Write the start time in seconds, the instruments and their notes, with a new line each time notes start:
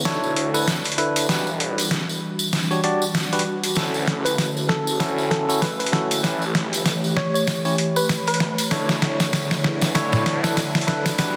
Already playing: analog synth pad D3 A3 E4 C#5
0.05 detuned saw bass B1, tine electric piano D4 E4 A4 C#5, snare, closed hi-hat
0.24 tambourine
0.36 detuned saw bass D2, closed hi-hat
0.54 tine electric piano D4 E4 A4 B4, tambourine
0.68 snare, closed hi-hat, tambourine
0.84 closed hi-hat, tambourine
0.92 closed hi-hat
0.98 tine electric piano D4 E4 A4 B4, closed hi-hat
1.16 closed hi-hat, tambourine
1.29 detuned saw bass E1, analog synth pad E3 G3 D4 F#4, tine electric piano D4 F#4 G4 B4, snare, closed hi-hat, tambourine
1.47 tambourine
1.60 closed hi-hat
1.78 closed hi-hat, tambourine
1.91 detuned saw bass E1, snare, closed hi-hat
2.09 tambourine
2.39 tambourine
2.53 snare, closed hi-hat, tambourine
2.71 tine electric piano D4 F#4 G4 C#5, tambourine
2.84 tine electric piano D4 F#4 G4 D5, closed hi-hat
3.02 tambourine
3.15 snare, closed hi-hat, tambourine
3.33 tine electric piano D4 F#4 G4 B4, closed hi-hat, tambourine
3.39 closed hi-hat
3.64 closed hi-hat, tambourine
3.75 detuned saw bass D2, analog synth pad D3 A3 C#4, tine electric piano C#4 E4 F#4 A4, snare, closed hi-hat, tambourine
3.94 tambourine
4.07 snare, closed hi-hat
4.18 detuned saw bass C#2
4.25 synth pluck B4, closed hi-hat, tambourine
4.38 detuned saw bass F#1, snare, closed hi-hat, tambourine
4.57 tambourine
4.69 synth pluck A4, snare
4.87 tambourine
5.00 detuned saw bass D2, tine electric piano C#4 E4 F#4 A4, snare, closed hi-hat, tambourine
5.18 tambourine
5.31 detuned saw bass F#1, synth pluck A4, snare, closed hi-hat
5.49 tine electric piano C#4 E4 F#4 A4, tambourine
5.62 synth pluck B4, snare, closed hi-hat, tambourine
5.79 synth pluck B4, closed hi-hat, tambourine
5.86 closed hi-hat
5.92 tine electric piano C#4 E4 F#4 A4, snare, closed hi-hat
6.11 closed hi-hat, tambourine
6.23 detuned saw bass A1, analog synth pad E3 G4 C#5, tine electric piano C#4 E4 G4 B4, snare, closed hi-hat, tambourine
6.42 tambourine
6.55 snare, closed hi-hat
6.67 detuned saw bass G#1
6.73 closed hi-hat, tambourine
6.85 detuned saw bass A1, snare, closed hi-hat, tambourine
7.04 tambourine
7.16 synth pluck C#5, snare
7.34 synth pluck C#5, tambourine
7.47 snare, closed hi-hat, tambourine
7.65 tine electric piano C#4 E4 G4 C#5, tambourine
7.78 closed hi-hat
7.96 synth pluck B4, tambourine
8.09 snare, closed hi-hat, tambourine
8.27 synth pluck B4, closed hi-hat, tambourine
8.34 closed hi-hat
8.40 detuned saw bass G1, snare
8.58 closed hi-hat, tambourine
8.71 detuned saw bass B1, analog synth pad D3 E4, tine electric piano D4 E4 A4 C#5, snare, closed hi-hat, tambourine
8.89 snare, tambourine
9.02 snare, closed hi-hat
9.20 snare, closed hi-hat, tambourine
9.33 detuned saw bass E2, snare, closed hi-hat, tambourine
9.51 snare, tambourine
9.64 snare
9.81 snare, tambourine
9.95 detuned saw bass B1, tine electric piano D4 E4 A4 C#5, snare, closed hi-hat, tambourine
10.12 snare, tambourine
10.26 detuned saw bass D2, snare, closed hi-hat
10.44 tine electric piano D4 E4 A4 B4, snare, tambourine
10.57 snare, closed hi-hat, tambourine
10.75 snare, closed hi-hat, tambourine
10.81 closed hi-hat
10.87 tine electric piano D4 E4 A4 B4, snare, closed hi-hat
11.06 snare, closed hi-hat, tambourine
11.18 detuned saw bass E1, analog synth pad E3 G3 D4 F#4, tine electric piano D4 F#4 G4 B4, snare, closed hi-hat, tambourine